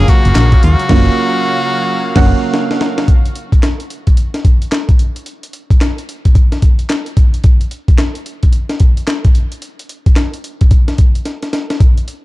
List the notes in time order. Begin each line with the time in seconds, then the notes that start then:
Already playing: C#3 F#3 G#3 A#3 C#4 F4 G#4 F5
0.08 F#4, kick, closed hi-hat, tambourine
0.25 F#1, closed hi-hat
0.35 A#1, snare, clap, closed hi-hat, tambourine
0.52 kick, closed hi-hat
0.63 D#2 F#4, closed hi-hat, tambourine
0.79 closed hi-hat
0.89 F#1 F#3 A#3 C#4 F4 F5, kick, snare, crash
2.16 F#1 A#3 C#4 F#5, kick, snare, crash
2.54 snare
2.71 snare
2.81 snare
2.98 snare
3.08 kick, closed hi-hat
3.25 closed hi-hat
3.35 closed hi-hat
3.52 kick, closed hi-hat
3.63 snare, clap, closed hi-hat
3.80 closed hi-hat
3.90 closed hi-hat
4.07 kick, closed hi-hat
4.17 closed hi-hat
4.34 snare, closed hi-hat
4.45 kick, closed hi-hat
4.62 closed hi-hat
4.72 snare, clap, closed hi-hat
4.89 kick, closed hi-hat
4.99 closed hi-hat
5.16 closed hi-hat
5.26 closed hi-hat
5.43 closed hi-hat
5.53 closed hi-hat
5.70 kick, closed hi-hat
5.81 snare, clap, closed hi-hat
5.98 closed hi-hat
6.09 closed hi-hat
6.25 kick, closed hi-hat
6.35 kick, closed hi-hat
6.52 snare, closed hi-hat
6.62 kick, closed hi-hat
6.79 closed hi-hat
6.89 snare, clap, closed hi-hat
7.06 closed hi-hat
7.17 kick, closed hi-hat
7.34 closed hi-hat
7.44 kick, closed hi-hat
7.61 closed hi-hat
7.71 closed hi-hat
7.88 kick, closed hi-hat
7.98 snare, clap, closed hi-hat
8.15 closed hi-hat
8.26 closed hi-hat
8.43 kick, closed hi-hat
8.53 closed hi-hat
8.69 snare, closed hi-hat
8.80 kick, closed hi-hat
8.97 closed hi-hat
9.07 snare, clap, closed hi-hat
9.25 kick, closed hi-hat
9.35 closed hi-hat
9.52 closed hi-hat
9.62 closed hi-hat
9.79 closed hi-hat
9.89 closed hi-hat
10.06 kick, closed hi-hat
10.16 snare, clap, closed hi-hat
10.34 closed hi-hat
10.44 closed hi-hat
10.61 kick, closed hi-hat
10.71 kick, closed hi-hat
10.88 snare, closed hi-hat
10.98 kick, closed hi-hat
11.15 closed hi-hat
11.25 snare, closed hi-hat
11.42 snare, closed hi-hat
11.53 snare, closed hi-hat
11.70 snare, closed hi-hat
11.80 kick, closed hi-hat
11.97 closed hi-hat
12.08 closed hi-hat